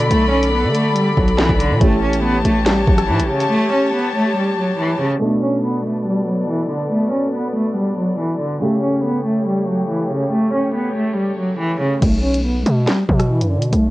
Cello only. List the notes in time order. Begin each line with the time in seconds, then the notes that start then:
0.11 A3
0.31 C#4
0.53 B3
0.75 A3
0.96 G3
1.17 F#3
1.39 E3
1.60 D3
1.81 A3
2.02 C#4
2.23 B3
2.45 A3
2.66 G3
2.87 F#3
3.09 E3
3.30 C#3
3.51 A3
3.73 C#4
3.94 B3
4.15 A3
4.36 G3
4.58 F#3
4.79 E3
5.00 C#3
5.21 A3
5.43 C#4
5.64 B3
5.85 A3
6.07 G3
6.28 F#3
6.49 E3
6.70 D3
6.91 A3
7.12 C#4
7.34 B3
7.56 A3
7.76 G3
7.98 F#3
8.19 E3
8.40 D3
8.62 A3
8.83 C#4
9.04 B3
9.26 A3
9.47 G3
9.68 F#3
9.89 E3
10.11 C#3
10.32 A3
10.54 C#4
10.75 B3
10.96 A3
11.17 G3
11.39 F#3
11.59 E3
11.81 C#3
12.02 A3
12.23 C#4
12.44 B3
12.66 A3
12.88 G3
13.09 F#3
13.30 E3
13.51 D3
13.72 A3